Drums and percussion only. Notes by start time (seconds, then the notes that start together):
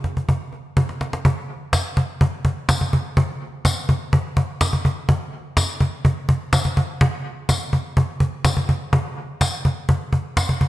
0.04 cajon bass, cajon slap
0.17 cajon bass
0.29 cajon bass
0.53 cajon slap
0.77 cajon bass, cajon slap
0.89 cajon slap
1.01 cajon slap
1.13 cajon slap
1.25 cajon bass
1.73 cajon bass, cajon slap, tambourine
1.97 cajon bass
2.21 cajon bass
2.45 cajon bass
2.69 cajon bass, cajon slap, tambourine
2.81 cajon bass
2.93 cajon bass
3.17 cajon bass
3.65 cajon bass, cajon slap, tambourine
3.89 cajon bass
4.13 cajon bass
4.37 cajon bass
4.61 cajon bass, cajon slap, tambourine
4.73 cajon bass
4.85 cajon bass
5.09 cajon bass
5.57 cajon bass, cajon slap, tambourine
5.80 cajon bass
6.05 cajon bass
6.29 cajon bass
6.53 cajon bass, cajon slap, tambourine
6.65 cajon bass
6.77 cajon bass
7.01 cajon bass
7.49 cajon bass, cajon slap, tambourine
7.73 cajon bass
7.97 cajon bass
8.20 cajon bass
8.45 cajon bass, cajon slap, tambourine
8.57 cajon bass
8.69 cajon bass
8.93 cajon bass
9.41 cajon bass, cajon slap, tambourine
9.65 cajon bass
9.89 cajon bass
10.13 cajon bass
10.37 cajon bass, cajon slap, tambourine
10.49 cajon bass
10.61 cajon bass